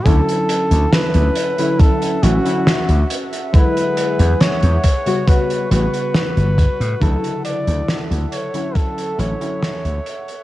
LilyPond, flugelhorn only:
\new Staff \with { instrumentName = "Flugelhorn" } { \time 4/4 \key d \major \tempo 4 = 69 a'4 b'4 a'8 fis'4 r8 | b'4 cis''4 b'8 b'4. | a'8 d''8 r8 cis''8 a'8 cis''4. | }